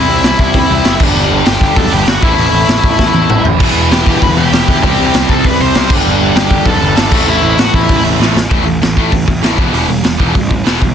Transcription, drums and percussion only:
0.23 snare loud
0.23 open hi-hat medium
0.39 kick medium
0.54 kick loud
0.54 open hi-hat medium
0.84 snare loud
0.84 open hi-hat medium
1.00 kick loud
1.00 crash loud
1.46 snare loud
1.46 open hi-hat medium
1.61 kick medium
1.76 kick loud
1.76 open hi-hat medium
2.07 snare loud
2.07 open hi-hat medium
2.23 kick loud
2.38 open hi-hat medium
2.68 snare loud
2.68 open hi-hat medium
2.84 kick loud
2.99 kick loud
2.99 snare medium
3.14 high tom medium
3.30 mid tom loud
3.45 floor tom medium
3.60 kick loud
3.60 crash loud
3.91 snare loud
3.91 open hi-hat medium
4.07 kick medium
4.22 kick loud
4.22 open hi-hat medium
4.52 snare loud
4.52 open hi-hat medium
4.68 kick loud
4.84 kick loud
4.84 open hi-hat medium
5.14 snare loud
5.14 open hi-hat medium
5.29 kick medium
5.44 kick loud
5.44 open hi-hat medium
5.74 snare loud
5.74 open hi-hat medium
5.90 kick loud
5.90 crash loud
6.36 snare loud
6.36 open hi-hat medium
6.51 kick medium
6.65 kick loud
6.65 open hi-hat medium
6.96 snare loud
6.96 open hi-hat medium
7.12 kick loud
7.12 crash loud
7.58 snare loud
7.58 open hi-hat medium
7.74 kick loud
7.89 kick loud
7.89 open hi-hat medium
8.22 snare medium
8.37 snare loud
8.51 kick loud
8.51 open hi-hat medium
8.82 snare loud
8.82 open hi-hat medium
8.97 kick medium
9.12 kick loud
9.12 open hi-hat medium
9.28 kick medium
9.43 snare loud
9.43 open hi-hat medium
9.58 kick medium
9.74 open hi-hat medium
10.04 snare loud
10.04 open hi-hat medium
10.20 kick medium
10.35 kick loud
10.35 open hi-hat medium
10.51 kick medium
10.66 snare loud
10.66 open hi-hat medium
10.82 kick medium

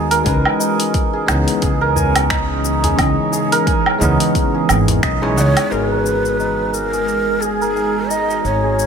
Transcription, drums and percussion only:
0.11 open hi-hat medium
0.11 cabasa soft
0.26 kick loud
0.26 open hi-hat soft
0.26 cabasa soft
0.45 low woodblock medium
0.61 cabasa medium
0.80 open hi-hat medium
0.80 cabasa soft
0.94 kick loud
0.94 open hi-hat soft
0.94 cabasa soft
1.28 finger snap medium
1.28 cabasa medium
1.28 low woodblock medium
1.48 open hi-hat medium
1.48 cabasa soft
1.62 kick loud
1.62 open hi-hat soft
1.62 cabasa soft
1.96 darbuka dum medium
1.96 cabasa medium
2.16 open hi-hat medium
2.16 cabasa soft
2.16 low woodblock medium
2.30 finger snap medium
2.30 kick medium
2.30 open hi-hat soft
2.30 cabasa soft
2.65 cabasa medium
2.84 open hi-hat medium
2.84 darbuka dum medium
2.84 cabasa soft
2.99 kick loud
2.99 open hi-hat soft
2.99 cabasa soft
2.99 low woodblock medium
3.32 darbuka ka soft
3.32 cabasa medium
3.52 open hi-hat medium
3.52 cabasa soft
3.67 kick loud
3.67 open hi-hat soft
3.67 cabasa soft
3.86 low woodblock medium
4.00 darbuka tek soft
4.00 darbuka dum medium
4.00 cabasa medium
4.20 open hi-hat medium
4.20 cabasa soft
4.35 kick loud
4.35 open hi-hat soft
4.35 cabasa soft
4.69 cabasa medium
4.69 low woodblock medium
4.88 open hi-hat medium
4.88 darbuka ka medium
4.88 darbuka dum medium
4.88 cabasa soft
5.03 finger snap medium
5.03 kick loud
5.03 open hi-hat soft
5.03 cabasa soft
5.23 darbuka tek medium
5.36 darbuka tek soft
5.36 cabasa medium
5.57 open hi-hat medium
5.57 cabasa soft
5.57 low woodblock medium
5.72 cabasa soft
6.06 cabasa medium
6.25 cabasa soft
6.40 cabasa soft
6.74 cabasa medium
6.93 cabasa soft
7.08 cabasa soft
7.42 cabasa medium
7.62 cabasa soft
7.76 cabasa soft
8.10 cabasa medium
8.30 cabasa soft
8.45 cabasa soft
8.79 cabasa medium

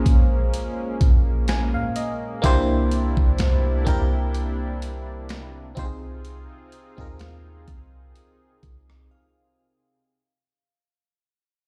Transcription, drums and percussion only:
0.06 kick medium
0.06 closed hi-hat medium
0.54 closed hi-hat medium
1.01 kick loud
1.01 closed hi-hat medium
1.48 snare loud
1.48 closed hi-hat medium
1.96 closed hi-hat medium
2.44 kick loud
2.44 closed hi-hat medium
2.92 closed hi-hat medium
3.17 kick medium
3.38 snare loud
3.38 closed hi-hat medium
3.87 kick medium
3.87 closed hi-hat medium
4.35 closed hi-hat medium
4.82 closed hi-hat medium
5.29 snare loud
5.29 closed hi-hat medium
5.77 kick loud
5.77 closed hi-hat medium
6.25 closed hi-hat medium
6.72 closed hi-hat medium
6.98 kick medium
7.19 snare loud
7.19 closed hi-hat medium
7.68 kick medium
7.68 closed hi-hat medium
8.16 closed hi-hat medium
8.63 kick medium
8.63 closed hi-hat medium
8.90 cross-stick medium

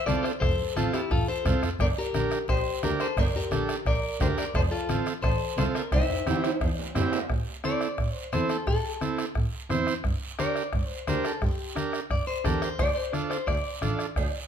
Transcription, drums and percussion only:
0.07 bombo rim medium
0.07 high conga medium
0.07 short guiro medium
0.24 bombo rim medium
0.24 short guiro medium
0.42 bombo low medium
0.42 bombo rim medium
0.42 high conga soft
0.42 long guiro medium
0.59 low conga medium
0.77 bombo rim medium
0.77 high conga medium
0.77 short guiro medium
0.93 bombo rim medium
0.93 high conga medium
0.93 short guiro medium
1.11 bombo low medium
1.11 bombo rim medium
1.11 low conga medium
1.11 long guiro medium
1.45 bombo low medium
1.45 bombo rim medium
1.45 low conga medium
1.45 short guiro medium
1.63 bombo rim medium
1.63 low conga medium
1.63 short guiro medium
1.80 bombo low medium
1.80 bombo rim medium
1.80 cowbell loud
1.80 high conga soft
1.80 long guiro medium
2.14 bombo rim medium
2.14 high conga medium
2.14 short guiro medium
2.31 bombo rim medium
2.31 short guiro medium
2.48 bombo low medium
2.48 bombo rim medium
2.48 cowbell medium
2.48 high conga soft
2.48 long guiro medium
2.83 bombo rim medium
2.83 high conga medium
2.83 short guiro medium
3.00 bombo rim medium
3.00 short guiro medium
3.17 bombo low medium
3.17 bombo rim medium
3.17 cowbell loud
3.17 long guiro medium
3.35 low conga medium
3.51 bombo rim medium
3.51 high conga medium
3.51 short guiro medium
3.69 bombo rim medium
3.69 short guiro medium
3.86 bombo low medium
3.86 bombo rim medium
3.86 cowbell medium
3.86 high conga soft
3.86 long guiro medium
4.20 bombo low medium
4.20 bombo rim medium
4.20 high conga medium
4.20 low conga medium
4.20 low timbale medium
4.20 short guiro medium
4.38 bombo rim medium
4.38 short guiro medium
4.55 bombo low medium
4.55 bombo rim medium
4.55 cowbell loud
4.55 long guiro medium
4.89 bombo rim medium
4.89 high conga medium
4.89 short guiro medium
5.06 bombo rim medium
5.06 short guiro medium
5.22 bombo low medium
5.22 bombo rim medium
5.22 cowbell medium
5.22 high conga soft
5.22 long guiro medium
5.58 bombo rim medium
5.58 high conga medium
5.58 short guiro medium
5.75 bombo rim medium
5.75 short guiro medium
5.92 bombo low medium
5.92 bombo rim medium
5.92 cowbell loud
5.92 high conga soft
5.92 high timbale medium
5.92 long guiro medium
6.10 low conga medium
6.10 high timbale medium
6.27 bombo rim medium
6.27 high conga medium
6.27 high timbale medium
6.27 short guiro medium
6.44 bombo rim medium
6.44 high timbale medium
6.44 short guiro medium
6.61 bombo low medium
6.61 bombo rim medium
6.61 cowbell medium
6.61 high conga soft
6.61 long guiro medium
6.79 low timbale medium
6.95 bombo rim medium
6.95 high conga medium
6.95 low conga medium
6.95 low timbale loud
6.95 short guiro medium
7.12 bombo rim medium
7.12 low timbale loud
7.12 short guiro medium
7.30 bombo low medium
7.30 bombo rim medium
7.30 high conga soft
7.30 long guiro medium
7.64 bombo rim medium
7.64 high conga medium
7.64 short guiro medium
7.81 bombo rim medium
7.81 short guiro medium
7.98 bombo low medium
7.98 bombo rim medium
7.98 high conga soft
7.98 long guiro medium
8.33 bombo rim medium
8.33 high conga medium
8.33 short guiro medium
8.49 bombo rim medium
8.49 short guiro medium
8.67 bombo low medium
8.67 bombo rim medium
8.67 high conga soft
8.67 long guiro medium
9.01 bombo rim medium
9.01 high conga medium
9.01 short guiro medium
9.18 bombo rim medium
9.18 short guiro medium
9.35 bombo low medium
9.35 bombo rim medium
9.35 high conga soft
9.35 long guiro medium
9.70 bombo rim medium
9.70 high conga medium
9.70 low conga medium
9.70 short guiro medium
9.87 bombo rim medium
9.87 short guiro medium
10.04 bombo low medium
10.04 bombo rim medium
10.04 high conga soft
10.04 long guiro medium
10.39 bombo rim medium
10.39 high conga medium
10.39 short guiro medium
10.56 bombo rim medium
10.56 short guiro medium
10.73 bombo low medium
10.73 bombo rim medium
10.73 high conga soft
10.73 long guiro medium
11.07 bombo rim medium
11.07 high conga medium
11.07 short guiro medium
11.25 bombo rim medium
11.25 short guiro medium
11.42 bombo low medium
11.42 bombo rim medium
11.42 high conga soft
11.42 long guiro medium
11.76 bombo rim medium
11.76 high conga medium
11.76 short guiro medium
11.93 bombo rim medium
11.93 short guiro medium
12.11 bombo low medium
12.11 bombo rim medium
12.11 high conga soft
12.11 long guiro medium
12.45 bombo low medium
12.45 bombo rim medium
12.45 high conga medium
12.45 low conga medium
12.45 short guiro medium
12.62 bombo rim medium
12.62 short guiro medium
12.79 bombo low medium
12.79 bombo rim medium
12.79 cowbell loud
12.79 high conga soft
12.79 long guiro medium
13.13 bombo rim medium
13.13 high conga medium
13.13 short guiro medium
13.31 bombo rim medium
13.31 short guiro medium
13.48 bombo low medium
13.48 bombo rim medium
13.48 cowbell medium
13.48 high conga soft
13.48 long guiro medium
13.82 bombo rim medium
13.82 high conga medium
13.82 short guiro medium
13.99 bombo rim medium
13.99 short guiro medium
14.16 bombo low medium
14.16 bombo rim medium
14.16 cowbell loud
14.16 high conga soft
14.16 long guiro medium

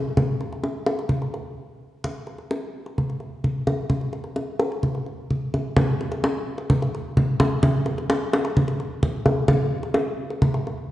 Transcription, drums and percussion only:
0.17 kendang high soft
0.17 kendang low soft
0.41 kendang slap soft
0.53 kendang slap soft
0.64 kendang high soft
0.86 kendang high soft
0.99 kendang slap soft
1.09 kendang slap soft
1.09 kendang low soft
1.22 kendang slap soft
1.34 kendang slap soft
2.04 kendang high soft
2.04 kendang low soft
2.27 kendang slap soft
2.39 kendang slap soft
2.51 kendang high soft
2.86 kendang slap soft
2.98 kendang slap soft
2.98 kendang low soft
3.10 kendang slap soft
3.20 kendang slap soft
3.44 kendang slap soft
3.44 kendang low soft
3.67 kendang high soft
3.67 kendang low soft
3.90 kendang high soft
3.90 kendang low soft
4.01 kendang slap soft
4.13 kendang slap soft
4.24 kendang slap soft
4.36 kendang high soft
4.59 kendang slap soft
4.59 kendang high soft
4.72 kendang slap soft
4.83 kendang slap soft
4.83 kendang low soft
4.95 kendang slap soft
5.06 kendang slap soft
5.31 kendang slap soft
5.31 kendang low soft
5.54 kendang slap soft
5.54 kendang high soft
5.54 kendang low soft
5.77 kendang high medium
5.77 kendang low medium
6.01 kendang slap soft
6.12 kendang slap soft
6.24 kendang high medium
6.58 kendang slap soft
6.70 kendang slap soft
6.70 kendang low medium
6.82 kendang slap soft
6.94 kendang slap soft
7.17 kendang slap soft
7.17 kendang low medium
7.40 kendang high medium
7.40 kendang low medium
7.63 kendang high medium
7.63 kendang low medium
7.86 kendang slap soft
7.98 kendang slap soft
8.10 kendang high medium
8.33 kendang high medium
8.45 kendang slap soft
8.57 kendang slap soft
8.57 kendang low medium
8.68 kendang slap soft
8.80 kendang slap soft
9.03 kendang slap soft
9.03 kendang low medium
9.26 kendang high medium
9.26 kendang low soft
9.48 kendang high medium
9.48 kendang low medium
9.83 kendang slap soft
9.95 kendang high medium
10.31 kendang slap soft
10.42 kendang slap soft
10.42 kendang low medium
10.54 kendang slap soft
10.67 kendang slap soft

